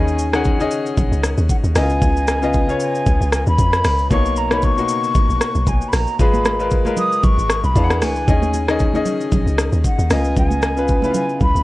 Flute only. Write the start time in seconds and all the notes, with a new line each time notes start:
Already playing: G#5
1.50 F#5
1.76 G#5
2.81 G#5
3.33 G#5
3.47 B5
4.11 C#6
4.37 A#5
4.52 B5
4.63 C#6
5.68 G#5
5.88 B5
5.94 A#5
6.20 B5
6.98 D#6
7.24 C#6
7.64 B5
8.02 G#5
9.86 F#5
10.12 G#5
10.37 G#5
11.16 G#5
11.42 B5